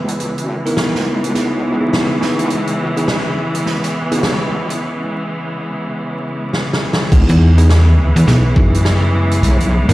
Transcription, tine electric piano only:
0.66 1.32 B3 medium
0.66 1.32 D#4 medium
0.66 1.32 E4 medium
0.66 1.32 A#4 medium
1.35 1.77 B3 medium
1.35 1.77 D#4 medium
1.35 1.77 E4 medium
1.35 1.77 G#4 medium
1.81 2.19 B3 medium
1.81 2.19 D#4 medium
1.81 2.19 E4 medium
1.81 2.19 G#4 medium
2.21 2.50 B3 medium
2.21 2.50 D#4 medium
2.21 2.50 E4 medium
2.21 2.50 G#4 medium
2.96 3.05 B3 medium
2.96 3.05 D#4 medium
2.96 3.05 E4 medium
2.96 3.05 G#4 loud
4.12 4.21 B3 medium
4.12 4.21 D#4 medium
4.12 4.21 E4 medium
4.12 4.21 G#4 loud
7.12 7.51 B3 loud
7.12 7.51 D#4 medium
7.12 7.51 E4 medium
7.12 7.51 G#4 loud
7.58 7.67 B3 medium
7.58 7.67 D#4 medium
7.58 7.67 E4 medium
7.58 7.67 G#4 loud
8.27 8.41 B3 medium
8.27 8.41 D#4 medium
8.27 8.41 E4 medium
8.27 8.41 G#4 loud
8.56 8.76 B3 medium
8.56 8.76 D#4 medium
8.56 8.76 E4 medium
8.56 8.76 G#4 medium
9.89 9.94 B3 medium
9.89 9.94 D#4 medium
9.89 9.94 E4 medium
9.89 9.94 A#4 medium

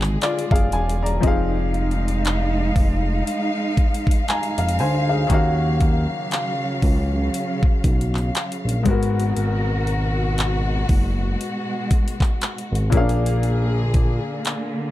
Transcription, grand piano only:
0.00 0.67 A#2 medium
0.00 0.68 A#3 medium
0.00 0.18 F4 medium
0.00 0.19 G#4 medium
0.00 0.20 D5 medium
0.22 0.50 F4 medium
0.22 0.50 D5 medium
0.52 0.72 G#4 medium
0.52 0.72 F5 medium
0.73 1.01 G#5 medium
1.02 1.51 D5 medium
1.02 1.50 A#5 medium
1.20 4.23 F3 medium
1.20 4.24 C4 medium
1.20 4.25 D#4 medium
1.26 4.26 G#4 medium
1.26 4.26 F5 medium
4.29 4.56 G#5 medium
4.29 4.77 A#5 medium
4.58 5.08 F5 medium
4.80 5.08 C5 medium
4.80 5.08 G#5 medium
5.09 5.58 G#4 medium
5.09 5.33 F5 medium
5.27 8.80 D#3 medium
5.27 8.81 A#3 medium
5.27 8.82 C#4 medium
5.32 8.83 F#4 medium
5.32 8.84 F5 medium
8.83 12.87 G#2 medium
8.83 12.88 G#3 medium
8.83 12.89 B3 medium
8.88 12.90 F#4 medium
8.88 12.91 A#4 medium
12.90 14.91 A#2 medium
12.90 14.91 A#3 medium
12.90 13.01 C#4 medium
12.95 14.91 G#4 medium
12.95 14.91 F5 medium
13.00 14.91 D4 medium

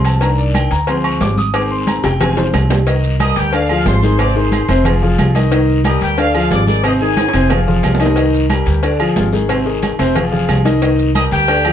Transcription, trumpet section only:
3.21 3.36 D#5 loud
3.21 3.36 D#6 medium
3.37 3.54 G4 medium
3.37 3.53 G5 loud
3.54 3.69 F5 loud
3.71 3.86 F5 loud
3.87 4.02 C5 medium
3.87 4.02 C6 medium
4.04 4.19 C5 medium
4.04 4.19 C6 medium
4.19 4.36 D5 medium
4.19 4.36 D6 medium
4.36 4.98 C5 medium
4.36 4.98 C6 medium
5.86 6.01 D#5 medium
5.86 6.01 D#6 medium
6.02 6.17 G4 medium
6.02 6.17 G5 medium
6.19 6.34 F5 medium
6.35 6.51 F5 loud
6.52 6.66 D5 medium
6.52 6.67 D6 medium
6.68 6.83 D5 medium
6.68 6.83 D6 medium
6.84 6.91 D#5 loud
6.84 6.92 D#6 medium
7.00 7.63 G#4 medium
7.00 7.63 G#5 loud
11.15 11.23 D#5 loud
11.15 11.23 D#6 medium
11.33 11.73 G4 medium
11.33 11.73 G5 loud

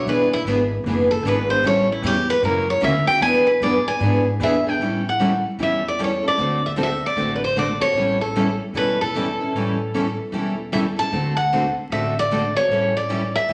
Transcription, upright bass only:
0.06 0.44 E1 medium
0.45 0.83 G#1 medium
0.84 1.22 F#1 medium
1.23 1.62 G#1 loud
1.63 2.02 A1 medium
2.02 2.41 E2 loud
2.42 2.81 F#2 medium
2.82 3.05 D2 loud
3.06 muted upright bass stroke soft
3.21 3.59 E2 medium
3.61 3.84 F#2 medium
3.85 muted upright bass stroke soft
4.00 4.38 G#2 medium
4.40 4.78 E2 loud
4.79 5.42 A1 medium
5.58 6.22 E2 medium
6.37 7.00 D2 medium
7.16 7.79 A1 medium
7.94 8.58 A1 medium
8.73 9.37 E1 medium
9.53 10.16 A1 medium
10.32 10.95 E1 medium
11.11 11.75 D2 medium
11.90 12.54 A1 medium
12.68 13.33 A1 medium
13.49 13.53 E1 medium

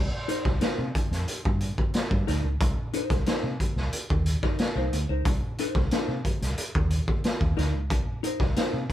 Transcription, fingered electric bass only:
0.45 0.58 C2 medium
0.62 muted fingered electric bass stroke soft
0.78 0.91 C3 loud
1.11 1.24 F2 medium
1.28 muted fingered electric bass stroke soft
1.46 1.70 G2 medium
2.11 2.23 G2 medium
2.28 2.40 D2 medium
2.44 2.56 C#2 medium
2.61 2.73 C2 loud
3.10 3.23 C2 medium
3.43 3.56 C3 medium
3.76 3.88 C2 medium
3.93 muted fingered electric bass stroke medium
4.10 4.34 D#2 medium
4.75 4.88 C2 medium
4.92 5.04 D2 medium
5.09 5.21 C#2 medium
5.25 5.38 C2 loud
5.75 5.87 C2 medium
5.92 muted fingered electric bass stroke soft
6.08 6.20 C3 medium
6.41 6.54 C2 medium
6.75 6.99 D#2 medium
7.41 7.53 D#2 medium
7.57 7.73 D2 medium
7.73 7.91 C#2 loud
7.91 8.03 C2 loud
8.40 8.52 C2 medium
8.57 muted fingered electric bass stroke soft
8.73 8.85 C3 loud

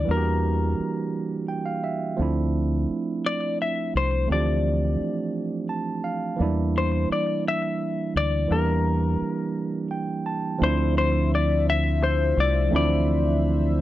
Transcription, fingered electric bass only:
0.09 0.74 E2 medium
0.80 muted fingered electric bass stroke soft
2.19 2.85 D2 medium
2.89 muted fingered electric bass stroke soft
3.95 4.26 C2 medium
4.30 4.96 D2 medium
5.00 muted fingered electric bass stroke soft
6.40 7.06 E2 loud
7.10 muted fingered electric bass stroke soft
8.16 8.47 D2 medium
8.51 9.16 E2 medium
9.21 muted fingered electric bass stroke soft
10.62 12.32 D2 loud
12.37 12.68 C2 medium
12.73 13.81 D2 medium

